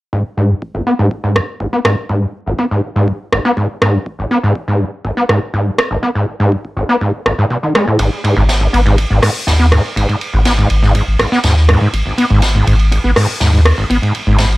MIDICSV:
0, 0, Header, 1, 4, 480
1, 0, Start_track
1, 0, Key_signature, 5, "minor"
1, 0, Tempo, 491803
1, 126, Time_signature, 4, 2, 24, 8
1, 14224, End_track
2, 0, Start_track
2, 0, Title_t, "Acid bass"
2, 0, Program_c, 0, 38
2, 123, Note_on_c, 0, 44, 95
2, 226, Note_off_c, 0, 44, 0
2, 363, Note_on_c, 0, 44, 95
2, 487, Note_on_c, 0, 42, 74
2, 502, Note_off_c, 0, 44, 0
2, 527, Note_off_c, 0, 42, 0
2, 728, Note_on_c, 0, 32, 74
2, 793, Note_off_c, 0, 32, 0
2, 845, Note_on_c, 0, 59, 99
2, 913, Note_off_c, 0, 59, 0
2, 967, Note_on_c, 0, 44, 102
2, 1065, Note_off_c, 0, 44, 0
2, 1207, Note_on_c, 0, 44, 93
2, 1325, Note_on_c, 0, 42, 73
2, 1340, Note_off_c, 0, 44, 0
2, 1366, Note_off_c, 0, 42, 0
2, 1564, Note_on_c, 0, 32, 73
2, 1633, Note_off_c, 0, 32, 0
2, 1686, Note_on_c, 0, 59, 95
2, 1752, Note_off_c, 0, 59, 0
2, 1804, Note_on_c, 0, 44, 103
2, 1906, Note_off_c, 0, 44, 0
2, 2044, Note_on_c, 0, 44, 99
2, 2167, Note_on_c, 0, 42, 70
2, 2182, Note_off_c, 0, 44, 0
2, 2206, Note_off_c, 0, 42, 0
2, 2408, Note_on_c, 0, 32, 72
2, 2473, Note_off_c, 0, 32, 0
2, 2525, Note_on_c, 0, 59, 98
2, 2593, Note_off_c, 0, 59, 0
2, 2648, Note_on_c, 0, 44, 102
2, 2745, Note_off_c, 0, 44, 0
2, 2887, Note_on_c, 0, 44, 102
2, 3005, Note_on_c, 0, 42, 83
2, 3020, Note_off_c, 0, 44, 0
2, 3046, Note_off_c, 0, 42, 0
2, 3245, Note_on_c, 0, 32, 75
2, 3313, Note_off_c, 0, 32, 0
2, 3368, Note_on_c, 0, 59, 98
2, 3433, Note_off_c, 0, 59, 0
2, 3483, Note_on_c, 0, 44, 95
2, 3586, Note_off_c, 0, 44, 0
2, 3725, Note_on_c, 0, 44, 99
2, 3847, Note_on_c, 0, 42, 70
2, 3862, Note_off_c, 0, 44, 0
2, 3887, Note_off_c, 0, 42, 0
2, 4088, Note_on_c, 0, 32, 75
2, 4153, Note_off_c, 0, 32, 0
2, 4205, Note_on_c, 0, 59, 99
2, 4273, Note_off_c, 0, 59, 0
2, 4328, Note_on_c, 0, 44, 101
2, 4425, Note_off_c, 0, 44, 0
2, 4566, Note_on_c, 0, 44, 99
2, 4683, Note_on_c, 0, 42, 70
2, 4698, Note_off_c, 0, 44, 0
2, 4725, Note_off_c, 0, 42, 0
2, 4924, Note_on_c, 0, 32, 81
2, 4992, Note_off_c, 0, 32, 0
2, 5046, Note_on_c, 0, 59, 96
2, 5112, Note_off_c, 0, 59, 0
2, 5163, Note_on_c, 0, 44, 99
2, 5266, Note_off_c, 0, 44, 0
2, 5404, Note_on_c, 0, 44, 93
2, 5526, Note_on_c, 0, 42, 77
2, 5541, Note_off_c, 0, 44, 0
2, 5566, Note_off_c, 0, 42, 0
2, 5767, Note_on_c, 0, 32, 69
2, 5832, Note_off_c, 0, 32, 0
2, 5882, Note_on_c, 0, 59, 97
2, 5952, Note_off_c, 0, 59, 0
2, 6006, Note_on_c, 0, 44, 97
2, 6104, Note_off_c, 0, 44, 0
2, 6245, Note_on_c, 0, 44, 100
2, 6364, Note_on_c, 0, 42, 79
2, 6379, Note_off_c, 0, 44, 0
2, 6405, Note_off_c, 0, 42, 0
2, 6603, Note_on_c, 0, 32, 73
2, 6672, Note_off_c, 0, 32, 0
2, 6725, Note_on_c, 0, 59, 97
2, 6791, Note_off_c, 0, 59, 0
2, 6844, Note_on_c, 0, 44, 103
2, 6946, Note_off_c, 0, 44, 0
2, 7083, Note_on_c, 0, 32, 75
2, 7152, Note_off_c, 0, 32, 0
2, 7207, Note_on_c, 0, 44, 101
2, 7273, Note_off_c, 0, 44, 0
2, 7324, Note_on_c, 0, 47, 92
2, 7392, Note_off_c, 0, 47, 0
2, 7447, Note_on_c, 0, 51, 75
2, 7545, Note_off_c, 0, 51, 0
2, 7563, Note_on_c, 0, 56, 96
2, 7666, Note_off_c, 0, 56, 0
2, 7686, Note_on_c, 0, 45, 72
2, 7784, Note_off_c, 0, 45, 0
2, 7802, Note_on_c, 0, 44, 97
2, 7905, Note_off_c, 0, 44, 0
2, 8043, Note_on_c, 0, 44, 95
2, 8145, Note_off_c, 0, 44, 0
2, 8165, Note_on_c, 0, 44, 103
2, 8231, Note_off_c, 0, 44, 0
2, 8404, Note_on_c, 0, 32, 76
2, 8471, Note_off_c, 0, 32, 0
2, 8522, Note_on_c, 0, 59, 95
2, 8591, Note_off_c, 0, 59, 0
2, 8644, Note_on_c, 0, 44, 101
2, 8743, Note_off_c, 0, 44, 0
2, 8885, Note_on_c, 0, 44, 98
2, 8984, Note_off_c, 0, 44, 0
2, 9002, Note_on_c, 0, 44, 98
2, 9071, Note_off_c, 0, 44, 0
2, 9242, Note_on_c, 0, 32, 78
2, 9311, Note_off_c, 0, 32, 0
2, 9364, Note_on_c, 0, 59, 98
2, 9431, Note_off_c, 0, 59, 0
2, 9483, Note_on_c, 0, 44, 97
2, 9585, Note_off_c, 0, 44, 0
2, 9723, Note_on_c, 0, 44, 100
2, 9825, Note_off_c, 0, 44, 0
2, 9846, Note_on_c, 0, 44, 101
2, 9912, Note_off_c, 0, 44, 0
2, 10087, Note_on_c, 0, 32, 74
2, 10152, Note_off_c, 0, 32, 0
2, 10203, Note_on_c, 0, 59, 102
2, 10272, Note_off_c, 0, 59, 0
2, 10325, Note_on_c, 0, 44, 103
2, 10424, Note_off_c, 0, 44, 0
2, 10566, Note_on_c, 0, 44, 96
2, 10664, Note_off_c, 0, 44, 0
2, 10684, Note_on_c, 0, 44, 104
2, 10752, Note_off_c, 0, 44, 0
2, 10923, Note_on_c, 0, 32, 76
2, 10992, Note_off_c, 0, 32, 0
2, 11048, Note_on_c, 0, 59, 102
2, 11113, Note_off_c, 0, 59, 0
2, 11165, Note_on_c, 0, 44, 92
2, 11267, Note_off_c, 0, 44, 0
2, 11404, Note_on_c, 0, 44, 102
2, 11506, Note_off_c, 0, 44, 0
2, 11527, Note_on_c, 0, 44, 95
2, 11592, Note_off_c, 0, 44, 0
2, 11767, Note_on_c, 0, 32, 73
2, 11832, Note_off_c, 0, 32, 0
2, 11885, Note_on_c, 0, 59, 94
2, 11953, Note_off_c, 0, 59, 0
2, 12007, Note_on_c, 0, 44, 101
2, 12105, Note_off_c, 0, 44, 0
2, 12247, Note_on_c, 0, 44, 95
2, 12345, Note_off_c, 0, 44, 0
2, 12364, Note_on_c, 0, 44, 101
2, 12432, Note_off_c, 0, 44, 0
2, 12605, Note_on_c, 0, 32, 84
2, 12673, Note_off_c, 0, 32, 0
2, 12728, Note_on_c, 0, 59, 95
2, 12793, Note_off_c, 0, 59, 0
2, 12846, Note_on_c, 0, 44, 102
2, 12947, Note_off_c, 0, 44, 0
2, 13085, Note_on_c, 0, 44, 93
2, 13186, Note_off_c, 0, 44, 0
2, 13208, Note_on_c, 0, 44, 102
2, 13273, Note_off_c, 0, 44, 0
2, 13448, Note_on_c, 0, 32, 71
2, 13513, Note_off_c, 0, 32, 0
2, 13565, Note_on_c, 0, 59, 99
2, 13633, Note_off_c, 0, 59, 0
2, 13687, Note_on_c, 0, 44, 100
2, 13785, Note_off_c, 0, 44, 0
2, 13927, Note_on_c, 0, 44, 100
2, 14025, Note_off_c, 0, 44, 0
2, 14045, Note_on_c, 0, 44, 104
2, 14113, Note_off_c, 0, 44, 0
2, 14224, End_track
3, 0, Start_track
3, 0, Title_t, "Sub bass"
3, 0, Program_c, 1, 38
3, 7805, Note_on_c, 1, 32, 99
3, 7894, Note_off_c, 1, 32, 0
3, 8168, Note_on_c, 1, 32, 87
3, 8473, Note_off_c, 1, 32, 0
3, 8525, Note_on_c, 1, 32, 78
3, 8834, Note_off_c, 1, 32, 0
3, 8888, Note_on_c, 1, 32, 81
3, 8973, Note_off_c, 1, 32, 0
3, 9245, Note_on_c, 1, 39, 83
3, 9554, Note_off_c, 1, 39, 0
3, 9725, Note_on_c, 1, 32, 99
3, 9814, Note_off_c, 1, 32, 0
3, 10087, Note_on_c, 1, 32, 85
3, 10393, Note_off_c, 1, 32, 0
3, 10446, Note_on_c, 1, 32, 76
3, 10754, Note_off_c, 1, 32, 0
3, 10808, Note_on_c, 1, 32, 78
3, 10893, Note_off_c, 1, 32, 0
3, 11166, Note_on_c, 1, 39, 80
3, 11474, Note_off_c, 1, 39, 0
3, 11646, Note_on_c, 1, 32, 98
3, 11735, Note_off_c, 1, 32, 0
3, 12009, Note_on_c, 1, 32, 82
3, 12314, Note_off_c, 1, 32, 0
3, 12366, Note_on_c, 1, 32, 78
3, 12674, Note_off_c, 1, 32, 0
3, 12729, Note_on_c, 1, 32, 81
3, 12813, Note_off_c, 1, 32, 0
3, 13086, Note_on_c, 1, 39, 78
3, 13394, Note_off_c, 1, 39, 0
3, 13566, Note_on_c, 1, 32, 95
3, 13655, Note_off_c, 1, 32, 0
3, 13928, Note_on_c, 1, 32, 87
3, 14224, Note_off_c, 1, 32, 0
3, 14224, End_track
4, 0, Start_track
4, 0, Title_t, "Drums"
4, 126, Note_on_c, 9, 36, 109
4, 223, Note_off_c, 9, 36, 0
4, 605, Note_on_c, 9, 36, 110
4, 703, Note_off_c, 9, 36, 0
4, 1085, Note_on_c, 9, 36, 112
4, 1182, Note_off_c, 9, 36, 0
4, 1325, Note_on_c, 9, 37, 61
4, 1423, Note_off_c, 9, 37, 0
4, 1565, Note_on_c, 9, 36, 102
4, 1662, Note_off_c, 9, 36, 0
4, 1805, Note_on_c, 9, 37, 80
4, 1902, Note_off_c, 9, 37, 0
4, 2044, Note_on_c, 9, 36, 117
4, 2142, Note_off_c, 9, 36, 0
4, 2525, Note_on_c, 9, 36, 112
4, 2622, Note_off_c, 9, 36, 0
4, 3005, Note_on_c, 9, 36, 111
4, 3103, Note_off_c, 9, 36, 0
4, 3245, Note_on_c, 9, 37, 61
4, 3343, Note_off_c, 9, 37, 0
4, 3485, Note_on_c, 9, 36, 109
4, 3583, Note_off_c, 9, 36, 0
4, 3726, Note_on_c, 9, 37, 73
4, 3823, Note_off_c, 9, 37, 0
4, 3965, Note_on_c, 9, 36, 118
4, 4063, Note_off_c, 9, 36, 0
4, 4446, Note_on_c, 9, 36, 117
4, 4543, Note_off_c, 9, 36, 0
4, 4925, Note_on_c, 9, 36, 112
4, 5023, Note_off_c, 9, 36, 0
4, 5165, Note_on_c, 9, 37, 56
4, 5263, Note_off_c, 9, 37, 0
4, 5405, Note_on_c, 9, 36, 116
4, 5503, Note_off_c, 9, 36, 0
4, 5646, Note_on_c, 9, 37, 76
4, 5743, Note_off_c, 9, 37, 0
4, 5885, Note_on_c, 9, 36, 110
4, 5983, Note_off_c, 9, 36, 0
4, 6365, Note_on_c, 9, 36, 115
4, 6463, Note_off_c, 9, 36, 0
4, 6487, Note_on_c, 9, 36, 77
4, 6585, Note_off_c, 9, 36, 0
4, 6845, Note_on_c, 9, 36, 112
4, 6942, Note_off_c, 9, 36, 0
4, 7085, Note_on_c, 9, 37, 52
4, 7182, Note_off_c, 9, 37, 0
4, 7325, Note_on_c, 9, 36, 116
4, 7422, Note_off_c, 9, 36, 0
4, 7564, Note_on_c, 9, 37, 72
4, 7662, Note_off_c, 9, 37, 0
4, 7797, Note_on_c, 9, 51, 73
4, 7805, Note_on_c, 9, 36, 115
4, 7895, Note_off_c, 9, 51, 0
4, 7902, Note_off_c, 9, 36, 0
4, 8047, Note_on_c, 9, 51, 60
4, 8144, Note_off_c, 9, 51, 0
4, 8284, Note_on_c, 9, 38, 122
4, 8285, Note_on_c, 9, 36, 109
4, 8287, Note_on_c, 9, 51, 91
4, 8381, Note_off_c, 9, 38, 0
4, 8382, Note_off_c, 9, 36, 0
4, 8385, Note_off_c, 9, 51, 0
4, 8529, Note_on_c, 9, 51, 70
4, 8627, Note_off_c, 9, 51, 0
4, 8650, Note_on_c, 9, 51, 37
4, 8748, Note_off_c, 9, 51, 0
4, 8764, Note_on_c, 9, 51, 76
4, 8765, Note_on_c, 9, 36, 106
4, 8861, Note_off_c, 9, 51, 0
4, 8862, Note_off_c, 9, 36, 0
4, 9002, Note_on_c, 9, 46, 69
4, 9005, Note_on_c, 9, 37, 57
4, 9100, Note_off_c, 9, 46, 0
4, 9102, Note_off_c, 9, 37, 0
4, 9244, Note_on_c, 9, 38, 121
4, 9245, Note_on_c, 9, 36, 116
4, 9248, Note_on_c, 9, 51, 93
4, 9342, Note_off_c, 9, 38, 0
4, 9343, Note_off_c, 9, 36, 0
4, 9346, Note_off_c, 9, 51, 0
4, 9366, Note_on_c, 9, 38, 36
4, 9464, Note_off_c, 9, 38, 0
4, 9485, Note_on_c, 9, 37, 75
4, 9489, Note_on_c, 9, 51, 68
4, 9583, Note_off_c, 9, 37, 0
4, 9586, Note_off_c, 9, 51, 0
4, 9725, Note_on_c, 9, 36, 110
4, 9731, Note_on_c, 9, 51, 84
4, 9823, Note_off_c, 9, 36, 0
4, 9828, Note_off_c, 9, 51, 0
4, 9850, Note_on_c, 9, 51, 37
4, 9948, Note_off_c, 9, 51, 0
4, 9965, Note_on_c, 9, 51, 59
4, 10063, Note_off_c, 9, 51, 0
4, 10201, Note_on_c, 9, 51, 92
4, 10204, Note_on_c, 9, 38, 119
4, 10205, Note_on_c, 9, 36, 111
4, 10298, Note_off_c, 9, 51, 0
4, 10302, Note_off_c, 9, 38, 0
4, 10303, Note_off_c, 9, 36, 0
4, 10330, Note_on_c, 9, 51, 43
4, 10428, Note_off_c, 9, 51, 0
4, 10441, Note_on_c, 9, 51, 65
4, 10538, Note_off_c, 9, 51, 0
4, 10566, Note_on_c, 9, 38, 33
4, 10664, Note_off_c, 9, 38, 0
4, 10684, Note_on_c, 9, 51, 78
4, 10686, Note_on_c, 9, 36, 103
4, 10781, Note_off_c, 9, 51, 0
4, 10783, Note_off_c, 9, 36, 0
4, 10924, Note_on_c, 9, 51, 64
4, 10926, Note_on_c, 9, 37, 56
4, 11022, Note_off_c, 9, 51, 0
4, 11023, Note_off_c, 9, 37, 0
4, 11052, Note_on_c, 9, 38, 41
4, 11149, Note_off_c, 9, 38, 0
4, 11161, Note_on_c, 9, 51, 89
4, 11166, Note_on_c, 9, 36, 107
4, 11167, Note_on_c, 9, 38, 107
4, 11258, Note_off_c, 9, 51, 0
4, 11264, Note_off_c, 9, 36, 0
4, 11265, Note_off_c, 9, 38, 0
4, 11290, Note_on_c, 9, 38, 41
4, 11388, Note_off_c, 9, 38, 0
4, 11406, Note_on_c, 9, 37, 79
4, 11407, Note_on_c, 9, 51, 63
4, 11503, Note_off_c, 9, 37, 0
4, 11504, Note_off_c, 9, 51, 0
4, 11646, Note_on_c, 9, 36, 109
4, 11648, Note_on_c, 9, 51, 84
4, 11744, Note_off_c, 9, 36, 0
4, 11745, Note_off_c, 9, 51, 0
4, 11888, Note_on_c, 9, 51, 68
4, 11986, Note_off_c, 9, 51, 0
4, 12121, Note_on_c, 9, 51, 91
4, 12124, Note_on_c, 9, 38, 113
4, 12126, Note_on_c, 9, 36, 108
4, 12219, Note_off_c, 9, 51, 0
4, 12222, Note_off_c, 9, 38, 0
4, 12224, Note_off_c, 9, 36, 0
4, 12368, Note_on_c, 9, 51, 72
4, 12465, Note_off_c, 9, 51, 0
4, 12486, Note_on_c, 9, 51, 39
4, 12584, Note_off_c, 9, 51, 0
4, 12606, Note_on_c, 9, 36, 114
4, 12610, Note_on_c, 9, 51, 76
4, 12704, Note_off_c, 9, 36, 0
4, 12707, Note_off_c, 9, 51, 0
4, 12845, Note_on_c, 9, 46, 76
4, 12846, Note_on_c, 9, 37, 60
4, 12943, Note_off_c, 9, 46, 0
4, 12944, Note_off_c, 9, 37, 0
4, 13081, Note_on_c, 9, 38, 112
4, 13086, Note_on_c, 9, 36, 105
4, 13086, Note_on_c, 9, 51, 85
4, 13179, Note_off_c, 9, 38, 0
4, 13184, Note_off_c, 9, 36, 0
4, 13184, Note_off_c, 9, 51, 0
4, 13206, Note_on_c, 9, 38, 37
4, 13304, Note_off_c, 9, 38, 0
4, 13324, Note_on_c, 9, 51, 68
4, 13326, Note_on_c, 9, 37, 84
4, 13422, Note_off_c, 9, 51, 0
4, 13424, Note_off_c, 9, 37, 0
4, 13566, Note_on_c, 9, 36, 105
4, 13569, Note_on_c, 9, 51, 77
4, 13664, Note_off_c, 9, 36, 0
4, 13667, Note_off_c, 9, 51, 0
4, 13693, Note_on_c, 9, 51, 46
4, 13791, Note_off_c, 9, 51, 0
4, 13806, Note_on_c, 9, 51, 58
4, 13904, Note_off_c, 9, 51, 0
4, 14038, Note_on_c, 9, 51, 86
4, 14039, Note_on_c, 9, 38, 126
4, 14046, Note_on_c, 9, 36, 115
4, 14136, Note_off_c, 9, 51, 0
4, 14137, Note_off_c, 9, 38, 0
4, 14144, Note_off_c, 9, 36, 0
4, 14174, Note_on_c, 9, 51, 39
4, 14224, Note_off_c, 9, 51, 0
4, 14224, End_track
0, 0, End_of_file